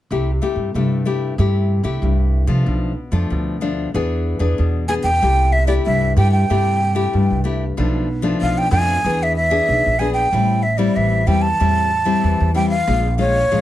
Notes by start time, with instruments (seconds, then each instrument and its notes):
0.10 upright bass C2, nylon-string guitar C3 A3 E4 G4
0.42 nylon-string guitar A3 E4 G4
0.56 upright bass G2
0.74 nylon-string guitar G2 A3 E4 G4, upright bass C3
1.05 nylon-string guitar A3 E4 G4
1.38 upright bass G2, nylon-string guitar C3 A3 E4 G4
1.83 upright bass C2, nylon-string guitar A3 E4 G4
2.02 upright bass C2, nylon-string guitar G2
2.47 upright bass C3, nylon-string guitar F3 A3 D4
2.66 upright bass B1, nylon-string guitar B2
3.12 upright bass F2, nylon-string guitar F3 A3 D4
3.30 upright bass D2, nylon-string guitar B2
3.61 nylon-string guitar F3 A3 D4
3.94 upright bass E2, nylon-string guitar E3 B3 D4 G#4
4.39 upright bass E2, nylon-string guitar B3 D4 G#4
4.58 upright bass E2, nylon-string guitar B2
4.88 nylon-string guitar B3 D4 G#4, flute G#5
5.03 upright bass E2, flute G5
5.22 upright bass C2, nylon-string guitar C3 A3 E4 G4
5.52 flute E5
5.67 nylon-string guitar A3 E4 G4, flute D5
5.86 upright bass C2, nylon-string guitar G2, flute E5
6.16 upright bass G2, nylon-string guitar A3 E4 G4, flute G5
6.31 flute G5
6.50 upright bass G2, nylon-string guitar C3 A3 E4 G4
6.95 nylon-string guitar A3 E4 G4
7.13 nylon-string guitar G2, upright bass G2
7.30 upright bass C2
7.44 nylon-string guitar A3 E4 G4
7.77 upright bass B1, nylon-string guitar B2 F3 A3 D4
8.22 nylon-string guitar F3 A3 D4
8.41 upright bass B1, nylon-string guitar B2, flute F5
8.58 flute G5
8.71 upright bass F2, nylon-string guitar F3 A3 D4, flute G#5
9.04 upright bass E2, nylon-string guitar E3 B3 D4 G#4
9.23 flute E5
9.36 flute E5
9.50 nylon-string guitar B3 D4 G#4
9.68 upright bass B1
9.86 upright bass A#1
9.99 nylon-string guitar B3 D4 G#4, flute G#5
10.13 flute G5
10.32 upright bass A1, nylon-string guitar A2 G3 C4 E4
10.62 flute E5
10.78 nylon-string guitar G3 C4 E4, flute D5
10.96 upright bass A1, nylon-string guitar E3, flute E5
11.27 upright bass E2, nylon-string guitar G3 C4 E4, flute G5
11.42 flute A5
11.60 upright bass E2, nylon-string guitar A2 G3 C4 E4
12.05 nylon-string guitar G3 C4 E4
12.23 upright bass E2, nylon-string guitar E3
12.40 upright bass E2
12.54 nylon-string guitar G3 C4 E4, flute G5
12.69 flute F5
12.87 upright bass A#1, nylon-string guitar A#2 G#3 C#4 F4
13.18 nylon-string guitar G#3 C#4 F4, flute C#5
13.51 upright bass A#1, nylon-string guitar F3 G#3 C#4 F4